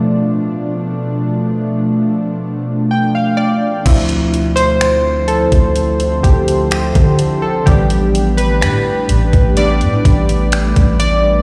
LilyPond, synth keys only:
\new Staff \with { instrumentName = "Synth keys" } { \time 4/4 \key d \dorian \tempo 4 = 63 << { r2. g''16 f''16 d''8 | <f c' e'>1 | <g b d'>2 <g b d'>8 r4. | } \\ { <b, f a d'>2.~ <b, f a d'>8 d''8~ | d''8. c''8. a'4 g'8 g'8. a'16 | g'8. b'16 b'4 d''4 r8 d''8 | } >> }